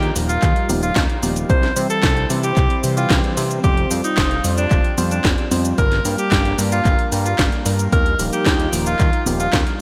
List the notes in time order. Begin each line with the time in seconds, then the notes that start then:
Already playing: D#2 G3 D#4 F4 G4 A#4
0.03 closed hi-hat
0.16 D#1 F3 A#3 D#4 G4, open hi-hat, cabasa
0.29 F4, closed hi-hat, cabasa
0.42 D#2, kick, clap, closed hi-hat, cabasa
0.56 closed hi-hat
0.69 D#1 F3 A#3 D#4 G4, open hi-hat, high conga, cabasa
0.83 F4, closed hi-hat, cabasa
0.96 D#2, kick, snare, clap, closed hi-hat, high conga, cabasa
1.10 closed hi-hat
1.23 D#1 F3 A#3 D#4 G4, open hi-hat, high conga, cabasa
1.36 closed hi-hat, cabasa
1.50 C2 C4 E4 C5, kick, closed hi-hat, cabasa
1.63 snare, closed hi-hat
1.76 C3 E3 G3 C4 G4, open hi-hat, cabasa
1.90 A4, closed hi-hat, cabasa
2.03 C2, kick, snare, clap, closed hi-hat, cabasa
2.17 closed hi-hat
2.30 C3 E3 G3 C4 G4, open hi-hat, cabasa
2.43 G4, closed hi-hat, cabasa
2.57 C2, kick, clap, closed hi-hat, cabasa
2.70 closed hi-hat
2.84 C3 E3 G3 C4 G4, open hi-hat, cabasa
2.97 E3 G3 C4 F4 G4, closed hi-hat, cabasa
3.10 C2, kick, snare, clap, closed hi-hat, cabasa
3.24 closed hi-hat
3.37 C3 E3 G3 C4 G4, open hi-hat, cabasa
3.51 closed hi-hat, cabasa
3.64 F1 G3 F4 G4, kick, closed hi-hat, high conga, cabasa
3.77 closed hi-hat
3.91 F2 G3 C4 F4 C5, open hi-hat, cabasa
4.04 D#4, closed hi-hat, cabasa
4.17 F1, kick, snare, clap, closed hi-hat, cabasa
4.31 closed hi-hat
4.44 F2 G3 C4 F4 C5, open hi-hat, cabasa
4.58 D4, closed hi-hat, cabasa
4.71 F1, kick, clap, closed hi-hat, cabasa
4.84 closed hi-hat
4.98 F2 G3 C4 F4 C5, open hi-hat, high conga, cabasa
5.11 D4, closed hi-hat, cabasa
5.25 F1, kick, snare, clap, closed hi-hat, high conga, cabasa
5.38 closed hi-hat
5.51 F2 G3 C4 F4 C5, open hi-hat, high conga, cabasa
5.65 closed hi-hat, cabasa
5.78 G1 G3 A#3 D4 A#4, kick, closed hi-hat, cabasa
5.92 snare, closed hi-hat
6.05 G2 G3 A#3 D4 A#4, open hi-hat, cabasa
6.18 G4, closed hi-hat, cabasa
6.32 G1, kick, snare, clap, closed hi-hat, cabasa
6.45 closed hi-hat
6.58 G2 G3 A#3 D4 A#4, open hi-hat, cabasa
6.72 F4, closed hi-hat, cabasa
6.85 G1, kick, clap, closed hi-hat, cabasa
6.99 closed hi-hat
7.12 G2 G3 A#3 D4 A#4, open hi-hat, cabasa
7.26 F4, closed hi-hat, cabasa
7.39 G1, kick, snare, clap, closed hi-hat, cabasa
7.52 closed hi-hat
7.66 G2 G3 A#3 D4 A#4, open hi-hat, cabasa
7.79 closed hi-hat, cabasa
7.92 D#2 D#4 F4 A#4, kick, closed hi-hat, high conga, cabasa
8.06 closed hi-hat
8.19 D#1 F3 A#3 D#4 G4, open hi-hat, cabasa
8.33 G4, closed hi-hat, cabasa
8.46 D#2, kick, snare, clap, closed hi-hat, cabasa
8.60 closed hi-hat
8.73 D#1 F3 A#3 D#4 G4, open hi-hat, cabasa
8.86 F4, closed hi-hat, cabasa
9.00 D#2, kick, clap, closed hi-hat, cabasa
9.13 closed hi-hat
9.26 D#1 F3 A#3 D#4 G4, open hi-hat, high conga, cabasa
9.40 F4, closed hi-hat, cabasa
9.53 D#2, kick, snare, clap, closed hi-hat, high conga, cabasa
9.67 closed hi-hat